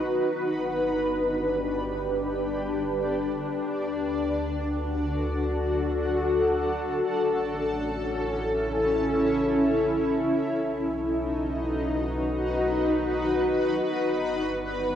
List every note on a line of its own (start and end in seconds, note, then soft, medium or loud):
0.00 0.23 B1 medium
0.00 0.29 D#4 medium
0.00 0.29 F#4 medium
0.00 4.88 B4 medium
0.28 3.62 G1 medium
0.28 7.08 D4 medium
0.77 3.68 G4 medium
3.68 7.02 D2 medium
3.98 8.45 F#4 medium
4.29 11.83 A4 medium
7.07 10.42 A1 medium
7.07 11.84 C#4 medium
7.53 10.47 E4 medium
10.46 13.82 B1 medium
10.46 13.87 D#4 medium
10.83 14.95 B4 medium
10.90 13.86 F#4 medium
13.84 14.95 G1 medium
13.84 14.95 D4 medium
14.21 14.95 G4 medium